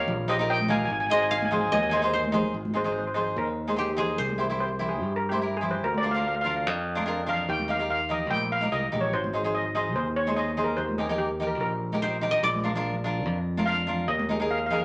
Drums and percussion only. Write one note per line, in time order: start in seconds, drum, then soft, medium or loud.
0.08 low conga medium
0.60 high conga medium
0.69 high conga medium
0.69 low conga medium
1.42 high conga medium
1.52 high conga medium
1.52 low conga medium
1.72 high conga medium
1.72 low conga medium
1.93 low conga medium
2.24 high conga medium
2.34 high conga medium
2.34 low conga medium
2.65 high conga medium
2.75 high conga medium
2.85 low conga medium
3.16 low conga medium
3.68 high conga medium
3.97 low conga medium
4.29 high conga medium
4.39 high conga medium
4.50 low conga medium
4.80 low conga medium
5.32 high conga medium
5.63 low conga medium
5.94 high conga medium
6.04 high conga medium
6.45 low conga medium
6.98 high conga medium
7.28 low conga medium
7.59 high conga medium
7.69 high conga medium
8.10 low conga medium
8.31 high conga medium
8.62 high conga medium
8.93 high conga medium
8.93 low conga medium
9.24 high conga medium
9.44 low conga medium
9.75 low conga medium
10.27 high conga medium
10.58 low conga medium
10.89 high conga medium
10.98 high conga medium
11.09 low conga medium
11.39 low conga medium
11.92 high conga medium
12.23 low conga medium
12.54 high conga medium
12.64 high conga medium
12.74 low conga medium
13.05 low conga medium
13.58 high conga medium
13.88 low conga medium
14.19 high conga medium
14.29 high conga medium
14.70 low conga medium